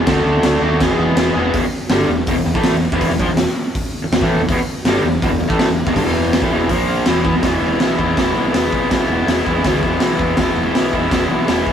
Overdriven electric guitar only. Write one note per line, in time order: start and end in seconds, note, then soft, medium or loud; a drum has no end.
0.05 0.60 D3 loud
0.05 0.61 A3 loud
0.05 0.62 D4 loud
0.10 0.60 F#4 loud
0.61 0.80 A3 medium
0.61 0.80 D4 medium
0.61 0.79 F#4 medium
0.66 0.81 D3 medium
0.79 1.33 E2 loud
0.79 1.34 B2 medium
0.79 1.35 E3 loud
0.79 1.35 G#3 loud
0.83 1.34 B3 loud
0.83 1.33 G#4 loud
1.34 1.54 E3 medium
1.34 1.53 G#3 medium
1.34 1.53 B3 medium
1.34 1.52 G#4 medium
1.39 1.52 E2 medium
1.39 1.53 B2 medium
1.53 1.62 E2 medium
1.53 1.63 B2 loud
1.65 muted overdriven electric guitar stroke medium
1.90 2.08 G2 medium
1.90 2.09 D3 medium
1.90 2.09 G3 loud
2.09 2.24 E2 medium
2.09 2.24 B2 medium
2.28 2.36 E2 loud
2.28 2.36 B2 loud
2.37 2.45 E2 medium
2.37 2.45 B2 medium
2.46 2.55 E2 medium
2.46 2.54 B2 medium
2.54 2.73 A2 medium
2.54 2.73 E3 loud
2.54 2.74 A3 loud
2.74 2.89 E2 medium
2.74 2.89 B2 medium
2.92 3.09 E2 medium
2.92 3.10 B2 medium
2.92 3.11 E3 loud
3.10 3.19 E2 medium
3.10 3.19 B2 medium
3.20 3.28 A#2 medium
3.20 3.29 F3 loud
3.29 3.44 E2 medium
3.29 3.44 B2 medium
4.04 muted overdriven electric guitar stroke medium
4.12 4.21 E2 medium
4.12 4.21 B2 medium
4.21 4.39 A2 medium
4.21 4.39 E3 medium
4.21 4.40 A3 loud
4.40 4.48 E2 medium
4.40 4.49 B2 medium
4.49 4.57 E2 loud
4.49 4.58 B2 loud
4.59 muted overdriven electric guitar stroke medium
4.87 5.04 G2 loud
4.87 5.04 D3 loud
4.87 5.04 G3 loud
5.05 5.19 E2 medium
5.05 5.19 B2 medium
5.22 5.30 E2 loud
5.22 5.30 B2 loud
5.31 5.38 E2 medium
5.31 5.39 B2 medium
5.39 5.49 E2 medium
5.39 5.47 B2 medium
5.48 5.67 A2 loud
5.48 5.67 E3 loud
5.48 5.68 A3 loud
5.67 5.82 E2 medium
5.67 5.83 B2 medium
5.86 5.94 E2 medium
5.86 5.95 B2 medium
5.95 6.03 G2 loud
5.95 6.04 D3 loud
6.04 6.40 E2 medium
6.04 6.41 B2 medium
6.04 6.41 E3 loud
6.41 6.50 A2 medium
6.41 6.51 E3 loud
6.51 6.69 E2 loud
6.51 6.69 B2 medium
6.51 6.70 E3 loud
6.69 7.06 A#2 medium
6.69 7.06 F3 loud
6.69 7.06 A#3 loud
7.06 7.24 E2 medium
7.06 7.23 B2 loud
7.06 7.23 E3 loud
7.24 7.33 E3 medium
7.24 7.34 B3 loud
7.35 7.40 E2 medium
7.35 7.42 B2 loud
7.41 8.15 E2 medium
7.41 7.98 B2 medium
7.41 7.78 E3 medium
7.41 7.80 G#3 medium
7.41 7.82 B3 loud
7.46 7.83 E4 loud
7.79 8.02 E3 medium
7.79 8.01 G#3 medium
7.79 7.99 B3 medium
7.83 7.98 E4 medium
7.98 8.18 G#3 medium
7.98 8.19 B3 medium
7.98 8.19 E4 medium
8.03 8.17 E3 medium
8.15 8.88 E2 medium
8.15 8.53 B2 loud
8.15 8.38 E3 medium
8.15 8.37 G#3 medium
8.15 8.35 B3 loud
8.19 8.34 E4 loud
8.34 8.54 G#3 medium
8.34 8.55 B3 medium
8.34 8.57 E4 medium
8.39 8.52 E3 medium
8.52 8.90 E3 medium
8.52 8.91 G#3 medium
8.52 8.92 B3 medium
8.57 8.93 E4 medium
8.88 9.62 E2 loud
8.88 9.45 B2 loud
8.88 9.27 E3 loud
8.88 9.28 G#3 medium
8.92 9.30 B3 loud
8.92 9.31 E4 loud
9.27 9.48 E3 medium
9.27 9.47 G#3 medium
9.27 9.46 B3 medium
9.31 9.44 E4 medium
9.44 9.65 G#3 medium
9.44 9.66 B3 medium
9.44 9.67 E4 medium
9.49 9.64 E3 medium
9.62 10.36 E2 medium
9.62 10.01 B2 loud
9.62 9.85 E3 loud
9.62 9.84 G#3 medium
9.62 9.83 B3 loud
9.67 9.81 E4 loud
9.81 10.01 G#3 medium
9.81 10.02 B3 medium
9.81 10.04 E4 medium
9.85 9.99 E3 medium
9.99 10.38 E3 medium
9.99 10.38 G#3 medium
9.99 10.40 B3 medium
10.04 10.40 E4 medium
10.36 11.09 E2 medium
10.36 10.93 B2 loud
10.36 10.74 E3 loud
10.36 10.76 G#3 loud
10.40 10.77 B3 loud
10.40 10.78 E4 loud
10.74 10.96 E3 medium
10.74 10.95 G#3 medium
10.74 10.94 B3 medium
10.79 10.92 E4 medium
10.92 11.11 G#3 medium
10.92 11.12 B3 medium
10.92 11.13 E4 medium
10.96 11.11 E3 medium
11.09 11.73 E2 medium
11.09 11.48 B2 medium
11.09 11.32 E3 medium
11.09 11.30 G#3 loud
11.09 11.29 B3 loud
11.13 11.27 E4 loud
11.27 11.46 G#3 medium
11.27 11.48 B3 medium
11.27 11.50 E4 medium
11.32 11.45 E3 medium
11.45 11.73 E3 medium
11.45 11.73 G#3 medium
11.45 11.73 B3 medium
11.50 11.73 E4 medium